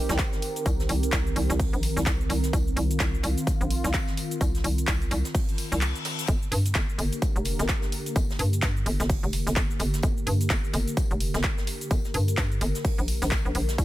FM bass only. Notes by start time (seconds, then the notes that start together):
0.09 C2
0.66 C2
0.89 C2
1.13 C2
1.36 C2
1.50 C2
1.73 A#1
1.97 C2
2.06 C2
2.30 C2
2.53 C2
2.76 C2
3.00 C2
3.23 C2
3.61 A#1
3.84 C2
4.41 C2
4.64 C2
4.88 C2
5.11 C2
5.72 C2
6.28 G1
6.52 G2
6.75 G1
6.98 G1
7.36 F1
7.59 G1
8.16 G1
8.39 G2
8.63 G2
8.86 G1
9.00 G1
9.23 F1
9.47 G1
9.56 G1
9.80 G1
10.03 G1
10.27 G2
10.50 G1
10.74 G1
11.11 F1
11.34 G1
11.91 G1
12.14 G2
12.38 G2
12.61 G1
12.98 A#1
13.22 A#1
13.45 A#1
13.55 A#1
13.78 C2